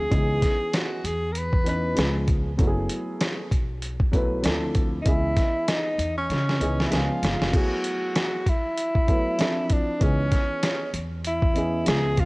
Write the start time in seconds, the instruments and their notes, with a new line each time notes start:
Already playing: alto saxophone G#4
0.09 upright bass C#2, upright piano E3 B3 C#4 D#4 G#4, kick, closed hi-hat
0.42 kick, snare, closed hi-hat
0.73 alto saxophone F#4, snare, closed hi-hat
1.04 upright bass E2, alto saxophone G#4, closed hi-hat
1.32 alto saxophone A#4, closed hi-hat
1.38 alto saxophone B4
1.53 kick
1.64 upright piano E3 B3 C#4 D#4, closed hi-hat
1.68 upright piano B4, alto saxophone B4
1.95 upright bass C#2, upright piano F3 G#3 B3 C#4 G#4, snare, closed hi-hat
2.28 kick, closed hi-hat
2.57 upright bass F#1, upright piano F#3 A3 B3 E4 F#4, kick, closed hi-hat
2.67 upright piano G#4
2.90 closed hi-hat
3.21 snare, closed hi-hat
3.51 upright bass B1, kick, closed hi-hat
3.82 closed hi-hat
4.00 kick
4.12 upright piano F#3 A3 B3 E4 B4, kick, closed hi-hat
4.42 upright bass D2, upright piano F3 C4 D4 E4, snare, closed hi-hat
4.46 upright piano A4
4.75 kick, closed hi-hat
5.02 upright piano E3 B3, alto saxophone D#4, closed hi-hat
5.06 upright bass C#2, upright piano C#4 G#4 D#5, alto saxophone E4, kick
5.37 kick, snare, closed hi-hat
5.68 alto saxophone D#4, snare, closed hi-hat
5.98 upright bass E2, closed hi-hat
6.17 alto saxophone C#4
6.30 upright bass C#3, snare, closed hi-hat
6.49 snare
6.59 upright bass C#2, upright piano E3 B3 C#4 D#4 G#4, closed hi-hat
6.80 snare
6.87 upright piano F3 G#3, alto saxophone E4
6.91 upright bass C#2, upright piano B3 C#4 G#4, alto saxophone F4, snare, closed hi-hat
7.23 upright bass F#1, snare, closed hi-hat
7.40 upright bass F1, snare
7.51 upright piano F#3 A3 B3 E4 G#4, kick, closed hi-hat, crash
7.57 alto saxophone F#4
7.84 closed hi-hat
8.15 snare, closed hi-hat
8.46 alto saxophone E4, kick, closed hi-hat
8.77 closed hi-hat
8.95 kick
9.07 upright piano F#3 A3 B3 E4, kick, closed hi-hat
9.11 upright piano B4
9.38 upright piano F3 C4 D4 E4 A4, snare, closed hi-hat
9.70 alto saxophone D4, kick, closed hi-hat
9.99 upright bass C#2, upright piano E3 B3 C#4 D#4 G#4, alto saxophone C#4, kick, closed hi-hat
10.32 kick, snare, closed hi-hat
10.63 snare, closed hi-hat
10.93 upright bass E2, closed hi-hat
11.25 alto saxophone E4, closed hi-hat
11.42 kick
11.54 upright piano E3 B3 C#4 G#4 D#5, closed hi-hat
11.85 upright bass C#2, upright piano F3 G#3 B3 C#4 G#4, alto saxophone G#4, snare, closed hi-hat
12.17 alto saxophone F4, kick, closed hi-hat